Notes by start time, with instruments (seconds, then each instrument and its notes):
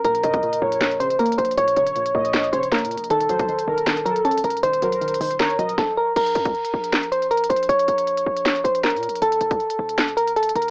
0.05 808-style bass A#1, synth pluck A#2, synth keys A#4, closed hi-hat
0.15 closed hi-hat
0.23 808-style bass F2, synth pluck C#3, soft synth lead D#5, closed hi-hat
0.34 kick, closed hi-hat
0.43 synth pluck A#2, closed hi-hat
0.53 closed hi-hat
0.62 808-style bass A#1, synth pluck A#2, soft synth lead C#5
0.72 closed hi-hat
0.81 synth pluck A#2, snare, clap, closed hi-hat
0.91 closed hi-hat
1.00 synth pluck C#3, synth keys C5, soft synth lead C5, closed hi-hat
1.10 808-style bass A1, closed hi-hat
1.19 synth pluck A#3, synth keys A#4, closed hi-hat
1.26 closed hi-hat
1.32 closed hi-hat
1.38 808-style bass A#1, synth keys C5, closed hi-hat
1.45 closed hi-hat
1.51 closed hi-hat
1.57 808-style bass A#1, synth pluck A#2, synth keys C#5, closed hi-hat
1.68 closed hi-hat
1.76 808-style bass A#1, synth pluck C#3, soft synth lead C#5, closed hi-hat
1.87 closed hi-hat
1.96 synth pluck A#2, closed hi-hat
2.06 closed hi-hat
2.15 808-style bass A#1, synth pluck A#2, soft synth lead D#5
2.25 closed hi-hat
2.34 synth pluck A#2, snare, clap, closed hi-hat
2.44 closed hi-hat
2.53 808-style bass A#1, synth pluck C#3, synth keys C5, soft synth lead C#5, closed hi-hat
2.63 closed hi-hat
2.72 synth pluck A#3, synth keys A#4, snare, clap, closed hi-hat
2.79 808-style bass A#2, closed hi-hat
2.85 closed hi-hat
2.91 closed hi-hat
2.96 808-style bass A#1, closed hi-hat
3.04 closed hi-hat
3.10 808-style bass D#1, synth pluck D#3, synth keys A4, closed hi-hat
3.21 closed hi-hat
3.29 808-style bass D#1, synth pluck F#3, soft synth lead C5, closed hi-hat
3.39 kick, closed hi-hat
3.49 synth pluck D#3, closed hi-hat
3.59 closed hi-hat
3.68 808-style bass D#1, synth pluck D#3, soft synth lead A#4
3.78 closed hi-hat
3.87 synth pluck D#3, snare, clap, closed hi-hat
3.97 closed hi-hat
4.05 synth pluck F#3, soft synth lead A4, synth keys A#4, closed hi-hat
4.16 closed hi-hat
4.25 synth pluck C#4, synth keys A4, closed hi-hat
4.31 closed hi-hat
4.38 closed hi-hat
4.44 808-style bass D#1, synth keys A#4, closed hi-hat
4.50 closed hi-hat
4.57 closed hi-hat
4.63 808-style bass D#1, synth pluck D#3, synth keys C5, closed hi-hat
4.73 closed hi-hat
4.82 808-style bass D#1, synth pluck F#3, soft synth lead A#4, closed hi-hat
4.92 closed hi-hat
5.01 synth pluck D#3, closed hi-hat
5.08 closed hi-hat
5.14 closed hi-hat
5.21 808-style bass D#1, synth pluck D#3, soft synth lead C5, open hi-hat
5.31 closed hi-hat
5.40 synth pluck D#3, synth keys A#4, soft synth lead C#5, snare, clap, closed hi-hat
5.50 closed hi-hat
5.59 808-style bass D#1, synth pluck F#3, soft synth lead D#5, closed hi-hat
5.69 closed hi-hat
5.78 synth keys A4, kick, snare
5.97 synth keys A#4
6.16 808-style bass A#1, synth keys A#4, closed hi-hat, crash
6.26 closed hi-hat
6.35 808-style bass F2, closed hi-hat
6.45 kick, closed hi-hat
6.54 closed hi-hat
6.64 closed hi-hat
6.73 808-style bass A#1
6.84 closed hi-hat
6.92 snare, clap, closed hi-hat
7.03 closed hi-hat
7.12 synth keys C5, closed hi-hat
7.22 808-style bass A1, closed hi-hat
7.31 synth keys A#4, closed hi-hat
7.37 closed hi-hat
7.44 closed hi-hat
7.49 808-style bass A#1, synth keys C5, closed hi-hat
7.56 closed hi-hat
7.63 closed hi-hat
7.69 808-style bass A#1, synth keys C#5, closed hi-hat
7.79 closed hi-hat
7.88 808-style bass A#1, closed hi-hat
7.98 closed hi-hat
8.07 closed hi-hat
8.17 closed hi-hat
8.26 808-style bass A#1
8.36 closed hi-hat
8.45 snare, clap, closed hi-hat
8.56 closed hi-hat
8.64 808-style bass A#1, synth keys C5, closed hi-hat
8.75 closed hi-hat
8.84 synth keys A#4, snare, clap, closed hi-hat
8.90 808-style bass A#2, closed hi-hat
8.96 closed hi-hat
9.03 closed hi-hat
9.08 808-style bass A#1, closed hi-hat
9.15 closed hi-hat
9.22 808-style bass D#1, synth keys A4, closed hi-hat
9.32 closed hi-hat
9.41 808-style bass D#1, closed hi-hat
9.51 kick, closed hi-hat
9.60 closed hi-hat
9.70 closed hi-hat
9.79 808-style bass D#1
9.89 closed hi-hat
9.98 snare, clap, closed hi-hat
10.09 closed hi-hat
10.17 synth keys A#4, closed hi-hat
10.28 closed hi-hat
10.36 synth keys A4, closed hi-hat
10.43 closed hi-hat
10.49 closed hi-hat
10.56 808-style bass D#1, synth keys A#4, closed hi-hat
10.62 closed hi-hat